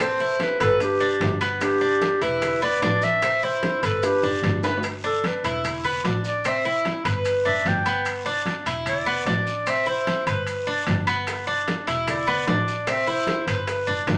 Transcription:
Already playing: A1
0.00 C4 A4 C5, high bongo, high conga, high timbale, long guiro, maracas
0.20 E4, high bongo, high conga, maracas
0.40 G4 B4, high bongo, high conga, high timbale, low timbale, short guiro, maracas
0.60 G1 F#4 A4 B4, high bongo, high timbale, short guiro, maracas
0.80 D4 G4, high bongo, high conga, high timbale, long guiro, maracas
1.00 D4, high conga, maracas
1.20 G1, high bongo, low bongo, high conga, high timbale, low timbale, short guiro, maracas
1.41 B3, high bongo, high conga, high timbale, short guiro, maracas
1.61 D4 G4, high bongo, high conga, high timbale, long guiro, maracas
1.81 D4, high conga, maracas
2.02 high bongo, high conga, high timbale, low timbale, short guiro, maracas
2.21 E1 E4 G4 B4, high conga, high timbale, short guiro, maracas
2.42 high bongo, high conga, low conga, high timbale, long guiro, maracas
2.62 B3 B4 D5, high conga, maracas
2.82 A1 D4, high bongo, low bongo, high conga, high timbale, low timbale, short guiro, maracas
3.02 C5 E5, high conga, short guiro, maracas
3.22 C4, high bongo, high conga, high timbale, long guiro, maracas
3.42 E4 A4 C5, high bongo, high conga, maracas
3.63 high bongo, high conga, high timbale, low timbale, short guiro, maracas
3.83 G1 F#4 A4 B4, high bongo, high timbale, short guiro, maracas
4.03 D4 G4, high bongo, high conga, high timbale, long guiro, maracas
4.23 F#1 D4, low bongo, high conga, maracas
4.43 G1, high conga, high timbale, low timbale, short guiro, maracas
4.63 B3, low bongo, high timbale, short guiro, maracas
4.77 low timbale
4.83 high conga, high timbale, long guiro, maracas
5.04 D4 A4, high conga, maracas
5.24 B4, high conga, high timbale, low timbale, short guiro, maracas
5.44 E1 E4, high conga, high timbale, short guiro, maracas
5.64 high conga, low conga, high timbale, long guiro, maracas
5.84 B3, high conga, low conga, maracas
6.04 A1 D4, high conga, high timbale, low timbale, short guiro, maracas
6.24 D5, short guiro, maracas
6.44 C4 E5, high conga, high timbale, long guiro, maracas
6.65 E4, high conga, maracas
6.85 high conga, high timbale, low timbale, short guiro, maracas
7.05 G1 B4, high timbale, short guiro, maracas
7.25 high conga, high timbale, long guiro, maracas
7.45 F#1 D4 E5, high conga, maracas
7.65 G1 G5, high conga, high timbale, low timbale, short guiro, maracas
7.86 B3, high conga, high timbale, short guiro, maracas
8.05 high conga, high timbale, long guiro, maracas
8.26 D4, high conga, maracas
8.46 high conga, high timbale, low timbale, short guiro, maracas
8.66 E1 E4, high conga, high timbale, short guiro, maracas
8.86 D5, high conga, low conga, high timbale, long guiro, maracas
9.06 B3, high conga, maracas
9.26 A1 D4 D5, high conga, high timbale, low timbale, short guiro, maracas
9.47 short guiro, maracas
9.66 C4 E5, high conga, high timbale, long guiro, maracas
9.86 E4 C5, high conga, maracas
10.07 high conga, high timbale, low timbale, short guiro, maracas
10.27 G1 B4, high timbale, short guiro, maracas
10.47 high conga, high timbale, long guiro, maracas
10.67 D4, high conga, maracas
10.87 G1, high conga, high timbale, low timbale, short guiro, maracas
11.07 B3, high conga, high timbale, short guiro, maracas
11.27 high bongo, high conga, high timbale, long guiro, maracas
11.47 D4, high conga, maracas
11.68 high bongo, high conga, high timbale, low timbale, short guiro, maracas
11.87 E1 E4, high conga, high timbale, short guiro, maracas
12.07 D5, high bongo, high conga, low conga, high timbale, long guiro, maracas
12.27 B3, high conga, low conga, maracas
12.47 A1 D4 D5, high bongo, low bongo, high conga, high timbale, low timbale, short guiro, maracas
12.68 short guiro, maracas
12.87 C4 E5, high bongo, high conga, high timbale, long guiro, maracas
13.07 E4 C5, high bongo, high conga, maracas
13.27 high bongo, high conga, high timbale, low timbale, short guiro, maracas
13.47 G1 B4, high bongo, high timbale, short guiro, maracas
13.67 high bongo, high conga, high timbale, long guiro, maracas
13.87 F#1 D4, high conga, maracas
14.07 G1, high bongo, low bongo, high conga, high timbale, low timbale, short guiro, maracas

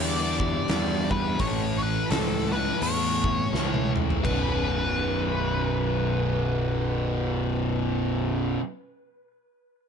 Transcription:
Already playing: E2 G2 D3 G3 D5
0.40 kick
0.68 E2 G2 D3 G3, snare, open hi-hat
1.11 E2 B4, kick
1.38 A1 A2 E3 A3 C#5, kick, open hi-hat
1.82 B4
2.10 C#2 A4, snare, open hi-hat
2.52 A2 E3 A3 B4
2.82 E2 C#5, open hi-hat
3.24 kick
3.53 C#2 A2 E3 A3, snare
3.74 high tom
3.96 mid tom
4.10 floor tom
4.23 B0 B1 F#2 B4, kick, crash
4.27 B2

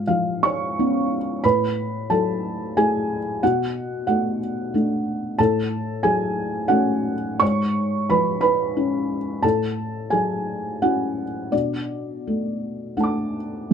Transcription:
Already playing: G#2 F4 F5
0.07 F3 F4 F5
0.43 C#5 C#6
0.79 B3 C#4
1.44 A2 B4 B5
2.10 F#3 A4 A5
2.77 A3 E4 G#4 G#5
3.43 B2 F#4 F#5
4.07 A3 F#4 F#5
4.74 A3 D4
5.38 A2 A4 A5
6.03 F#3 G#4 G#5
6.68 A3 C#4 F#4 F#5
7.40 G#2 C#5 C#6
8.10 F3 B4 B5
8.41 B4 B5
8.77 C#4
9.42 A2 A4 A5
10.10 F#3 G#4 G#5
10.82 C#4 E4 F#4 F#5
11.52 B2 D4 D5
12.27 A3
12.97 A3 D4 F#5 A5
13.04 D6

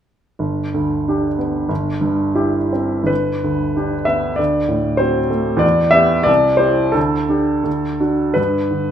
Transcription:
0.39 G1
0.74 D2
1.08 D4 G4
1.38 B3
1.69 G1
2.01 G2
2.35 E4 G4
2.73 C4
3.03 G1 B4
3.44 D2
3.76 D4 G4
4.05 B3 E5
4.36 D2 D5
4.68 A2
4.97 C4 F#4 C5
5.30 A3
5.57 E2 D5
5.91 B3 G4 E5
6.23 C2 D5
6.57 E4 G4 C5
6.92 D2 A4
7.29 D4 G4
7.64 D2
8.00 D4 F#4
8.34 G2 B4
8.71 D3

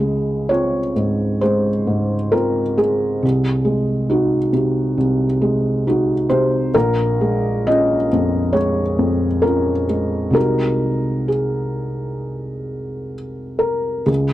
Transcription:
Already playing: C#2 G#4
0.00 G#3
0.49 C4 F4 C#5
0.96 G#2
1.41 G#3 C5
1.87 G#2
2.32 C4 F4 A#4
2.77 G#3 G#4
3.23 C2
3.65 G#3
4.10 D#4 F#4
4.53 C3
4.98 C2
5.41 G#3
5.87 D#4 F#4
6.30 C3 C5
6.74 A#1 A#4
7.21 G#3
7.67 C#4 F4 D#5
8.13 F2
8.53 G#3 C#5
8.99 F2
9.42 C#4 F4 A#4
9.89 G#3
10.30 C2 G#3 D#4 F#4
10.35 A#4
11.28 G#4
13.59 A#4
14.06 C#2 G#4

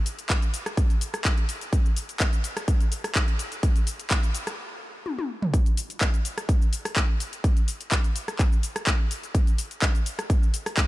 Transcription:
0.06 open hi-hat, cabasa
0.19 closed hi-hat, cabasa
0.30 kick, clap, closed hi-hat, cabasa
0.42 closed hi-hat, cabasa
0.54 open hi-hat, cabasa
0.66 cross-stick, closed hi-hat, cabasa
0.77 kick, closed hi-hat, cabasa
0.90 closed hi-hat, cabasa
1.01 open hi-hat, cabasa
1.14 cross-stick, closed hi-hat, cabasa
1.25 kick, clap, open hi-hat, cabasa
1.38 closed hi-hat
1.49 open hi-hat, cabasa
1.61 closed hi-hat, cabasa
1.73 kick, closed hi-hat, cabasa
1.86 cabasa
1.96 open hi-hat, cabasa
2.09 closed hi-hat, cabasa
2.20 kick, clap, closed hi-hat, cabasa
2.33 closed hi-hat, cabasa
2.44 open hi-hat, cabasa
2.57 cross-stick, closed hi-hat, cabasa
2.68 kick, closed hi-hat, cabasa
2.81 closed hi-hat, cabasa
2.92 open hi-hat, cabasa
3.04 cross-stick, open hi-hat, cabasa
3.15 kick, clap, closed hi-hat, cabasa
3.28 closed hi-hat
3.39 open hi-hat, cabasa
3.52 closed hi-hat, cabasa
3.63 kick, closed hi-hat, cabasa
3.76 closed hi-hat, cabasa
3.87 open hi-hat, cabasa
3.99 closed hi-hat, cabasa
4.10 kick, clap, closed hi-hat, cabasa
4.23 closed hi-hat, cabasa
4.34 open hi-hat, cabasa
4.47 cross-stick, closed hi-hat, cabasa
5.06 high tom
5.19 high tom
5.42 mid tom
5.54 kick, closed hi-hat, cabasa
5.66 closed hi-hat, cabasa
5.77 open hi-hat, cabasa
5.90 closed hi-hat, cabasa
6.01 kick, clap, closed hi-hat, cabasa
6.14 closed hi-hat, cabasa
6.25 open hi-hat, cabasa
6.38 cross-stick, closed hi-hat, cabasa
6.49 kick, closed hi-hat, cabasa
6.62 cabasa
6.73 open hi-hat, cabasa
6.85 cross-stick, open hi-hat, cabasa
6.96 kick, clap, closed hi-hat, cabasa
7.20 open hi-hat, cabasa
7.33 closed hi-hat, cabasa
7.44 kick, closed hi-hat, cabasa
7.57 closed hi-hat, cabasa
7.68 open hi-hat, cabasa
7.81 closed hi-hat, cabasa
7.92 kick, clap, closed hi-hat, cabasa
8.04 closed hi-hat, cabasa
8.16 open hi-hat, cabasa
8.28 cross-stick, closed hi-hat, cabasa
8.39 kick, clap, closed hi-hat, cabasa
8.52 cabasa
8.63 open hi-hat, cabasa
8.76 cross-stick, closed hi-hat, cabasa
8.87 kick, clap, open hi-hat, cabasa
9.11 open hi-hat, cabasa
9.23 closed hi-hat, cabasa
9.35 kick, closed hi-hat, cabasa
9.47 closed hi-hat, cabasa
9.58 open hi-hat, cabasa
9.71 closed hi-hat, cabasa
9.82 kick, clap, closed hi-hat, cabasa
9.95 closed hi-hat, cabasa
10.06 open hi-hat, cabasa
10.19 cross-stick, closed hi-hat, cabasa
10.30 kick, closed hi-hat, cabasa
10.43 cabasa
10.54 open hi-hat, cabasa
10.66 cross-stick, open hi-hat, cabasa
10.77 kick, clap, closed hi-hat, cabasa

